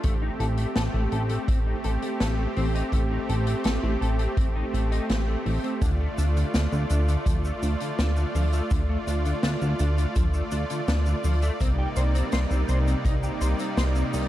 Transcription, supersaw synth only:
Already playing: A3
0.04 C4 G4
5.82 F4 D5
11.60 C3 G3 A#3 D#4

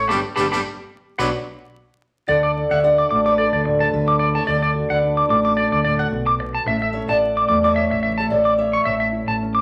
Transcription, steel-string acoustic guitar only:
0.09 G4 A4 B4
0.36 G4 A4 B4
0.51 G4 A4 B4
1.18 D4 F#4 B4
2.28 D5 F#5
2.70 C#5 E5
2.84 D5 F#5
3.26 B4 D5
3.67 C#5
3.82 B4 D5
3.93 F#4 B4
4.36 A4 C#5
4.47 A4 D5
4.91 B4 D5
6.93 C#5 E5
7.08 D5 F#5
7.64 C#5 E5
8.20 A4 C#5
8.30 A4 D5
8.58 C#5 E5

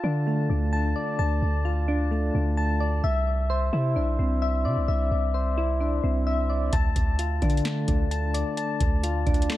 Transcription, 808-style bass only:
0.04 D3
0.50 D2
1.19 D2
1.42 D2
2.34 D2
3.04 C2
3.73 C3
3.96 B1
4.19 C2
4.65 C3
4.77 C2
4.88 C2
5.11 C2
6.04 C2
6.73 D2
6.96 D2
7.42 D3
7.88 D2
8.80 D2
9.27 D2

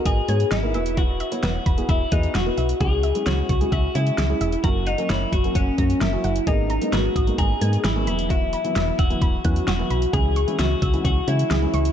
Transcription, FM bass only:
0.06 G#1
0.29 G#2
0.52 G#1
0.74 E1
1.43 E1
1.66 E1
1.89 E1
2.12 E2
2.35 E1
2.58 B1
2.81 C#2
3.26 C#2
3.49 C#2
3.72 C#2
3.95 C#3
4.18 C#2
4.41 E1
4.64 F#1
5.10 F#1
5.33 F#1
5.55 F#1
5.78 F#2
6.01 F#1
6.24 F#1
6.47 G#1
6.93 G#1
7.16 G#1
7.38 G#1
7.61 G#2
7.84 G#1
8.07 E1
8.76 E1
8.99 E1
9.22 E1
9.45 E2
9.68 E1
9.91 B1
10.13 C#2
10.59 C#2
10.82 C#2
11.05 C#2
11.28 C#3
11.51 C#2
11.74 C#2

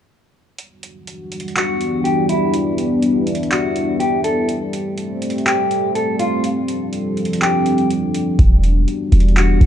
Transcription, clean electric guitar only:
1.57 F#4
2.04 G4
2.29 E4
3.52 F#4
4.00 G4
4.24 A4
5.46 G4
5.95 A4
6.19 F4
7.42 G4
9.37 F#4

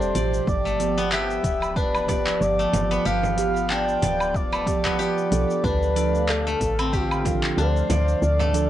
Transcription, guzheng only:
Already playing: A3 C4 D4 G4
0.15 D5
0.65 A3
0.98 B3
1.12 G4
1.77 D4
2.09 D5
2.59 A3
2.91 B3
3.05 G4
3.70 D4
4.02 D5
4.52 A3
4.85 B3
4.99 G4
5.64 D4
5.96 D5
6.47 A3
6.79 C4
6.93 G4
7.58 D4
7.90 D5
8.40 A3

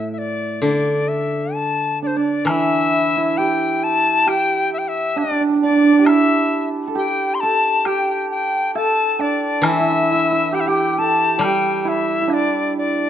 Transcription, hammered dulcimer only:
2.02 D4
2.16 D4
2.50 E4
3.17 E4
3.38 G4
4.27 G4
5.16 D4
5.23 D4
5.31 D4
5.40 D4
5.49 D4
5.56 D4
5.63 D4
5.70 D4
5.76 D4
5.84 D4
5.92 D4
5.99 G4
6.05 E4
6.87 A4
6.95 G4
7.43 A4
7.86 G4
8.75 A4
9.19 D4
9.64 E4
9.72 E4
9.80 E4
9.87 E4
9.92 E4
10.02 E4
10.11 E4
10.15 E4
10.31 E4
10.52 G4
10.68 G4
10.98 A4
11.38 A4
11.44 G4
11.85 E4
12.22 E4
12.27 D4

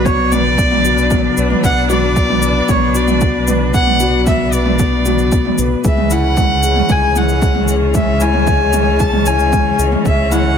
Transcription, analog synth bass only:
Already playing: B1
1.37 B1
1.63 B1
2.69 B1
5.58 B1
5.85 C#2
6.90 C#2
9.79 C#2
10.06 C#2

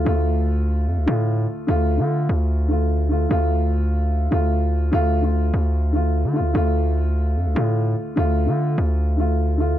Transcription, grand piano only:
Already playing: D3 A3 F4
0.05 D3 A3 F4
1.06 D3 A3 F4
1.67 D3 A3 F4
1.97 D3 A3 F4
2.68 D3 A3 F4
3.09 D3 A3 F4
3.29 D3 A3 F4
4.31 D3 A3 F4
4.91 D3 A3 F4
5.22 D3 A3 F4
5.93 D3 A3 F4
6.33 D3 A3 F4
6.54 D3 A3 F4
7.55 D3 A3 F4
8.16 D3 A3 F4
8.46 D3 A3 F4
9.17 D3 A3 F4
9.58 D3 A3 F4

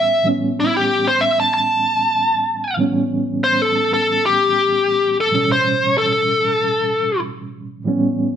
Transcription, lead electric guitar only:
Already playing: E5
0.60 E4
0.77 G4
1.07 C5
1.21 E5
1.40 A5
1.54 A5
3.44 C5
3.62 A4
3.93 A4
4.26 G4
5.21 A4
5.52 C5
5.98 A4

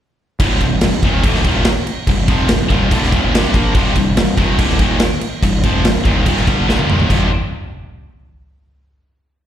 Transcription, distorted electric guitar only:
0.40 C2 G2 C3
0.63 C2 G2
0.84 C2 G2
1.04 D#2 A#2 D#3
1.24 D2 A2 D3
1.45 D#2 A#2 D#3
2.09 C2 G2
2.28 F2 C3 F3
2.49 C2 G2
2.70 D#2 A#2 D#3
2.91 D2 A2 D3
3.12 D#2 A#2 D#3
3.33 C2 G2 C3
3.54 A#2 F3 A#3
3.75 C2 G2 C3
3.96 C2 G2
4.17 C2 G2
4.38 D#2 A#2 D#3
4.57 D2 A2 D3
4.79 D#2 A#2 D#3
5.43 C2 G2
5.64 F2 C3 F3
5.85 C2 G2
6.06 D#2 A#2 D#3
6.27 D#2 A#2 D#3
6.46 G2 D3 G3
6.68 C2 G2 C3
6.88 D#2 A#2 D#3
7.09 C2 G2 C3

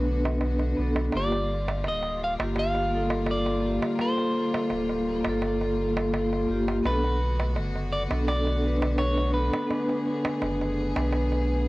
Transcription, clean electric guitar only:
1.16 D5
1.88 D#5
2.24 F5
2.59 F5
3.31 D5
4.01 C5
6.86 B4
7.92 D5
8.28 D5
8.99 C#5
9.34 B4

